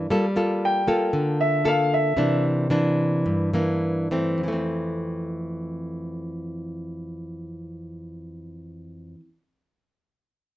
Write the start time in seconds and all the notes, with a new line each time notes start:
0.10 G3 A#3 F4 A4
0.36 A#3 F4 A4
0.65 G5
0.88 A#3 F4 A4
1.13 D3
1.41 E5
1.65 A#3 F4 A4 F5
1.94 E5
2.17 C3 E3 A#3 D4
2.70 E3 A#3 D4
3.26 G2
3.54 E3 A#3 D4
4.11 E3 A3 C4
4.38 F2
4.43 E3
4.48 A3
4.53 C4